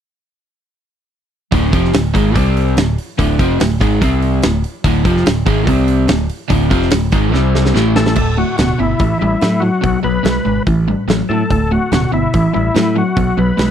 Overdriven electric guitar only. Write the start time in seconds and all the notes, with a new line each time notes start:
1.52 D2 A2 D3
1.72 F2 C3 F3
1.93 D2 A2
2.14 G#2 D#3 G#3
2.34 C3 G3 C4
2.78 D2 A2
3.18 D2 A2 D3
3.39 F2 C3 F3
3.60 D2 A2
3.81 G#2 D#3 G#3
4.02 C3 G3 C4
4.44 D2 A2
4.85 D2 A2 D3
5.04 F2 C3 F3
5.25 D2 A2
5.46 G#2 D#3 G#3
5.68 C3 G3 C4
6.08 D2 A2
6.49 D2 A2 D3
6.70 F2 C3 F3
6.93 D2 A2
7.13 G#2 D#3 G#3
7.33 C3 G3 C4
7.75 A2 E3 A3
8.16 D2 A2
8.38 D2 A2
8.59 D2 B2
8.79 D2 B2
9.00 A2 E3
9.21 A2 G3
9.42 A2 F#3
9.62 A2 F#3
9.82 B2 F#3
10.04 B2 F#3
10.24 B2 G#3
10.45 B2 G#3
10.67 A2 E3
10.88 A2 G3
11.08 A2 F#3
11.31 A2 F#3
11.50 D2 A2
11.71 D2 A2
11.92 D2 B2
12.12 D2 B2
12.34 A2 E3
12.53 A2 G3
12.74 A2 F#3
12.95 A2 F#3
13.17 B2 F#3
13.37 B2 F#3
13.57 B2 G#3